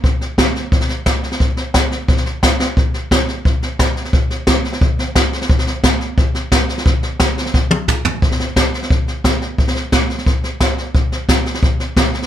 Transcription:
\new DrumStaff \with { instrumentName = "Drums" } \drummode { \time 4/4 \tempo 4 = 176 <bd sn>8 sn8 <hhp bd sn>8 sn8 <bd sn>16 sn16 sn8 <hhp bd sn>8 sn16 sn16 | <bd sn>8 sn8 <hhp bd sn>8 sn8 <bd sn>16 sn16 sn8 <hhp bd sn>8 sn8 | <bd sn>8 sn8 <hhp bd sn>8 sn8 <bd sn>8 sn8 <hhp bd sn>8 sn16 sn16 | <bd sn>8 sn8 <hhp bd sn>8 sn16 sn16 <bd sn>8 sn8 <hhp bd sn>8 sn16 sn16 |
<bd sn>16 sn16 sn8 <hhp bd sn>8 sn8 <bd sn>8 sn8 <hhp bd sn>8 sn16 sn16 | <bd sn>8 sn8 <hhp bd sn>8 sn16 sn16 <bd sn>8 tommh8 <hhp bd toml>8 tomfh8 | <bd sn>16 sn16 sn8 <hhp bd sn>8 sn16 sn16 <bd sn>8 sn8 <hhp bd sn>8 sn8 | <bd sn>16 sn16 sn8 <hhp bd sn>8 sn16 sn16 <bd sn>8 sn8 <hhp bd sn>8 sn8 |
<bd sn>8 sn8 <hhp bd sn>8 sn16 sn16 <bd sn>8 sn8 <hhp bd sn>8 sn16 sn16 | }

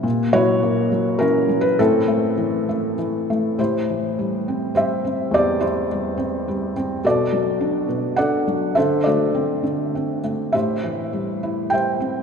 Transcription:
<<
  \new Staff \with { instrumentName = "Felt piano" } { \time 3/4 \key a \dorian \tempo 4 = 103 << { r8 cis''4. ais'8. b'16 | a'2 r4 | c''2 e''4 | d''8 c''2 r8 |
d''2 fis''4 | e''8 d''2 r8 | e''2 g''4 | } \\ { r8 <e' fis'>4. <cis' e'>4 | <c' e'>2 r4 | <e' g'>2 <g' c''>4 | g'8 <e' g'>2 r8 |
<fis' a'>2 <a' d''>4 | <a' c''>8 <fis' a'>2 r8 | <g' c''>2 <c'' e''>4 | } >> }
  \new Staff \with { instrumentName = "Felt piano" } { \clef bass \time 3/4 \key a \dorian ais,8 fis8 ais8 fis8 e8 fis8 | a,8 a8 e8 a8 e8 a8 | a,8 e8 g8 c'8 g8 c'8 | e,8 e8 g8 c'8 g8 c'8 |
b,8 fis8 d'8 b,8 d'8 fis8 | d8 a8 c'8 d8 c'8 a8 | a,8 e8 g8 e'8 g8 c'8 | }
>>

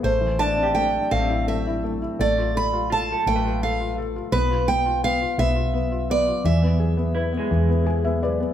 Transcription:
<<
  \new Staff \with { instrumentName = "Steel-string acoustic guitar" } { \time 6/8 \key a \minor \tempo 4. = 56 c''8 a''8 g''8 f''8 e''8 r8 | d''8 b''8 a''8 g''8 f''8 r8 | b'8 g''8 f''8 e''4 d''8 | e''2 r4 | }
  \new Staff \with { instrumentName = "Clean electric guitar" } { \time 6/8 \key a \minor r8 d'16 g'8. c'4.~ | c'8 r8 f'16 a'16 b'4.~ | b'4 r2 | r4 e'16 gis4.~ gis16 | }
  \new Staff \with { instrumentName = "Felt piano" } { \time 6/8 \key a \minor << { r2. | r2. | r2. | r2 gis''16 e''16 d''8 | } \\ { a16 e16 a16 c'16 a8 a16 e'16 a16 e'16 a16 e'16 | a16 f'16 a'16 f'16 a'16 f'16 a16 f'16 a'16 f'16 a'16 f'16 | b16 f'16 b16 f'16 b16 f'16 b16 f'16 b16 f'16 b16 f'16 | e16 b16 gis'16 b16 b'16 b16 e16 b16 gis'16 b16 b'16 b16 | } >> }
  \new Staff \with { instrumentName = "Fretless electric bass" } { \clef bass \time 6/8 \key a \minor a,,4. a,,4. | a,,4. a,,4. | b,,4. b,,4. | e,4. e,4. | }
>>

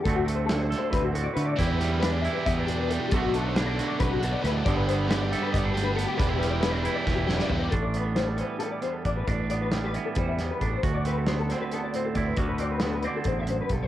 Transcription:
<<
  \new Staff \with { instrumentName = "Clean electric guitar" } { \time 7/8 \key a \dorian \tempo 4 = 136 a'16 fis'16 a'16 c''16 a'16 c''16 a'16 c''16 b'16 fis'16 a'16 d''16 b'16 d''16 | d''16 b'16 c''16 b'16 b'16 d''16 e''16 b'16 e''16 b'16 g'16 b'16 a'16 g'16 | a'16 fis'16 a'16 c''16 b'16 d''16 b'16 d''16 b'16 fis'16 a'16 d''16 b'16 d''16 | d''16 b'16 c''16 b'16 b'16 d''16 e''16 b'16 d''16 b'16 g'16 b'16 a'16 g'16 |
b'16 g'16 b'16 d''16 b'16 d''16 b'16 d''16 b'16 g'16 b'16 d''16 b'16 d''16 | a'16 d''16 b'16 a'16 c''16 a'16 c''16 b'16 a'16 d''16 c''16 a'16 d''16 b'16 | d''16 b'16 d''16 b'16 g'16 b'16 d''16 a'16 c''16 e''16 c''16 b'16 a'16 c''16 | a'16 d''16 b'16 a'16 c''16 a'16 c''16 b'16 a'16 d''16 c''16 a'16 d''16 b'16 |
d''16 b'16 d''16 b'16 a'16 b'16 d''16 a'16 c''16 e''16 c''16 b'16 a'16 c''16 | }
  \new Staff \with { instrumentName = "Overdriven electric guitar" } { \time 7/8 \key a \dorian r2. r8 | <e b e' g'>8 <b e' g'>8 <e b e' g'>8 <b e' g'>4 <b e' g'>8 <e b e' g'>8 | <b, fis b d' fis'>8 <b d' fis'>8 <b, fis b d' fis'>8 <b d' fis'>4 <b d' fis'>8 <fis b d' fis'>8 | <g b d' g'>8 <b d' g'>8 <g b d' g'>8 <b d' g'>4 <b d' g'>8 <g b d' g'>8 |
<e b e' g'>8 <b e' g'>8 <e b e' g'>8 <b e' g'>4 <b e' g'>8 <e b e' g'>8 | r2. r8 | r2. r8 | r2. r8 |
r2. r8 | }
  \new Staff \with { instrumentName = "Clean electric guitar" } { \time 7/8 \key a \dorian << { <d a c' fis'>8 a8 c'8 a'8 c'8 fis'8 a8 | e'8 g8 d'8 e'8 b16 d'16 d'8 g8 | <d a d' fis'>8 a8 d'8 fis'2 | <d b d'>8 b8 d'8 a'8 b16 d'8. b8 |
d'16 e'16 g8 b16 d'16 e'2 | d'8 b8 g8 b8 g8 b8 d'8 | d'8 b8 g8 b8 g8 b8 d'8 | fis'8 c'8 b8 c'8 b8 c'8 e'8 |
fis'8 c'8 b8 c'2 | } \\ { d,4 d4. a,4 | e,4 e4. b,4 | b,4 d4 c8 b,8 a,8 | g,4 d4. d,4 |
e,4 e4 e,8 fis,8 g,8 | a,4. e4 e,4 | a,4. e4 e,4 | d,4. d4 a,4 |
d,4. d8 e,8 fis,8 g,8 | } >> }
  \new Staff \with { instrumentName = "Fingered electric bass" } { \clef bass \time 7/8 \key a \dorian d,2 d,4 d8 | e,2 e,4. | b,,2 b,,4 d,8 | g,,2 g,,4. |
e,,2 e,,4 e,8 | a,,2 r4 a,,8 | a,,2 e,4 a,,8 | d,2 r4 d,8 |
d,2 a,,4 b,,8 | }
  \new DrumStaff \with { instrumentName = "Drums" } \drummode { \time 7/8 <hh bd>8 hh8 <hh sn>8 <hh sn>8 <hh bd sn>8 hh8 hh8 | <hh bd>8 <hh sn>8 <hh sn>8 hh8 <hh bd>8 hh8 hh8 | <hh bd>8 hh8 <hh sn>8 <hh sn>8 <hh bd>8 hh8 <hh sn>8 | <hh bd>8 hh8 <hh sn>8 <hh sn>8 <hh bd>8 <hh sn>8 hh8 |
<hh bd>8 <hh sn>8 <hh sn>8 hh8 <bd sn>8 sn16 sn16 tomfh8 | <hh bd>8 hh8 <hh sn>8 hh8 hh8 hh8 <hh bd>8 | <hh bd>8 hh8 <hh sn>8 hh8 <hh bd>8 <hh sn>8 <hh bd>8 | <hh bd>8 hh8 <hh sn>8 <hh sn>8 hh8 hh8 <hh bd>8 |
<hh bd>8 hh8 <hh sn>8 hh8 <hh bd>8 hh8 <hh bd>8 | }
>>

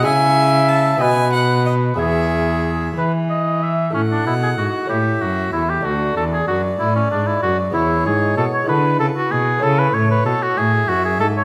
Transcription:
<<
  \new Staff \with { instrumentName = "Violin" } { \time 6/8 \key e \major \tempo 4. = 63 gis''4 a''8 gis''8 fis''8 dis''8 | e''4. r4. | \key a \major fis''4. e''4. | d''2. |
cis''4. b'4. | cis''4. e''4. | }
  \new Staff \with { instrumentName = "Oboe" } { \time 6/8 \key e \major e''4. b'4. | gis'4. b'8 dis''8 e''8 | \key a \major cis'16 d'16 e'16 gis'16 fis'8 g'8 fis'8 e'16 g'16 | fis'8 a'16 gis'16 fis'8 e'16 cis'16 d'16 e'16 fis'8 |
e'8 gis'8 a'16 cis''16 b'8 a'16 fis'16 gis'8 | a'16 b'16 cis''16 b'16 a'16 fis'16 gis'8 fis'16 gis'16 a'16 cis''16 | }
  \new Staff \with { instrumentName = "Lute" } { \time 6/8 \key e \major <gis e' e''>4. <b fis' dis''>4. | <b gis' e''>2. | \key a \major <a e'>4. <a cis' e'>4. | <a d'>2. |
<gis b e'>4. <gis b e'>4. | <a cis' e'>2. | }
  \new Staff \with { instrumentName = "Lute" } { \clef bass \time 6/8 \key e \major cis4. b,4. | e,4. e4. | \key a \major a,8 b,8 gis,8 a,8 fis,8 e,8 | d,8 e,8 fis,8 a,8 gis,8 fis,8 |
e,8 gis,8 b,8 d8 cis8 b,8 | cis8 a,8 b,8 a,8 fis,8 gis,8 | }
  \new Staff \with { instrumentName = "Cello" } { \clef bass \time 6/8 \key e \major cis4. b,4. | e,4. e4. | \key a \major a,8 b,8 gis,8 a,8 fis,8 e,8 | d,8 e,8 fis,8 a,8 gis,8 fis,8 |
e,8 gis,8 b,8 d8 cis8 b,8 | cis8 a,8 b,8 a,8 fis,8 gis,8 | }
>>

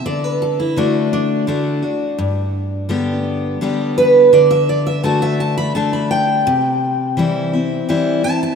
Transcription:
<<
  \new Staff \with { instrumentName = "Steel-string acoustic guitar" } { \time 3/4 \key d \mixolydian \tempo 4 = 84 d''16 b'16 a'16 e'16 d'8 d'4.~ | d'4. r4 b'8 | d''16 e''16 d''16 e''16 a''16 e''16 a''16 b''16 a''16 b''16 g''8~ | g''4. r4 a''16 a''16 | }
  \new Staff \with { instrumentName = "Steel-string acoustic guitar" } { \time 3/4 \key d \mixolydian << { r4 <d a d' fis'>4 <d a d' fis'>8 <d' fis'>8 | r4 <d g b g'>4 <d g b g'>4 | r4 <d a d' fis'>4 <d a d'>4 | r4 <e g c' e'>8 <c' e'>8 <e g c' e'>8 <c' e'>8 | } \\ { d2 r4 | g,2 r4 | d2 r4 | c2 r4 | } >> }
>>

